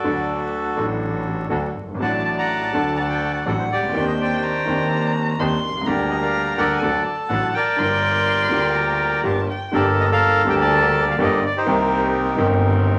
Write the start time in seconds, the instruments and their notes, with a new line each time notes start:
Already playing: bandoneon F#4 A4 D5
0.02 double bass D2, grand piano D2 D3 F#3 A3 D4 A4, bandoneon D4 F#4 A4
0.76 double bass A1, grand piano A1 A2 F#3 A3 D4 A4, bandoneon D4 F#4 A4
1.50 grand piano D2 D3 F#3 A3 D4 A4, double bass D2, bandoneon D4 F#4 A4
1.75 double bass G1
1.81 grand piano F#1
1.88 grand piano G1
1.94 grand piano G#1
1.99 double bass A1, grand piano A1 A2 F#3 A3 D4 F#4, bandoneon A3 D4 F#4 F#5 A5, violin A5
2.03 bandoneon D5
2.25 bandoneon A5
2.38 bandoneon D5 F#5 A#5
2.72 double bass D2, grand piano D2 D3 F#3 A3 D4, bandoneon D4 F#4 A4 A5
2.76 grand piano A4
2.97 bandoneon D5 F#5 A5 A#5
3.10 bandoneon G5
3.33 bandoneon F#5
3.46 grand piano A1 A2 F#3 A3 D4 A4, double bass A1, bandoneon D4 F#4 A4 D5, violin F#5
3.59 bandoneon C5
3.71 double bass C#2, bandoneon G4 D5
3.76 grand piano C2
3.82 grand piano C#2
3.89 grand piano D2 D#3
3.94 double bass D#2, grand piano D#2 D#3 C4 D4 G4, bandoneon D4 C5, violin G5
4.07 bandoneon D#5
4.21 bandoneon C5 D5 G5
4.43 violin A#5
4.67 grand piano D#2 D#3 C4 D4 G4, double bass D#2, bandoneon D4 C5
5.39 double bass D#2, grand piano D#2 D#3 C4 D4 G4, bandoneon D4 D#4 C5, violin C6
5.63 double bass C2
5.69 grand piano B1
5.75 grand piano C2
5.81 grand piano C#2
5.86 double bass D2, grand piano D2 D3 G3 A#3 G4, bandoneon D4 G4 A#4 D5, violin A#5
6.10 bandoneon D#5
6.22 bandoneon A#4 D5 F5
6.58 double bass D2, grand piano D2 D3 G3 A#3 G4, bandoneon D4 G4 A4 A#4 D5 F#5
6.76 violin G#5
6.81 double bass D2, grand piano D2 D3 F#3 A3 F#4, bandoneon D4 F#4 A4, violin A5
7.06 bandoneon D5
7.29 double bass A1, grand piano A1 A2 D3 F#3 A3 F#4, bandoneon D4 F#4 A4 F#5
7.54 bandoneon A#4 D5 G5
7.76 double bass G1, grand piano G1 G2 D3 G3 A#3, bandoneon F4 G4 A#4, violin C6
7.80 grand piano F4
8.48 grand piano D2 D3 G3 A#3, double bass D2, bandoneon F4 G4 A#4
8.52 grand piano F4
8.75 violin A#5
9.23 grand piano G1 G2 D3 G3 A#3 F4, double bass G1, bandoneon F4 G4 A#4, violin A5
9.50 violin G5
9.71 double bass G1, grand piano G1 G2 D3 G3 A#3, bandoneon G4 A4 A#4 D5 A5
9.76 grand piano G4
10.01 bandoneon D#5
10.12 bandoneon A4 A#4 F5
10.44 grand piano D2 D3 G3 A#3 G4, double bass D2, bandoneon G4 A5
10.50 bandoneon G5
10.61 bandoneon D5 A5
11.11 bandoneon F5
11.18 grand piano G1 G2 D3 A3 A#3 G4, double bass G1, bandoneon A#3 G4 A4
11.23 bandoneon D#5
11.46 bandoneon D5
11.57 bandoneon D#4 G4 C5
11.65 grand piano C2 C3 D#3 A#3 C4 G4, double bass C2, bandoneon C4 D#4 A#4
12.36 grand piano G1 G2 D#3 A#3 C4, double bass G1, bandoneon C4 D#4 A#4
12.40 grand piano G4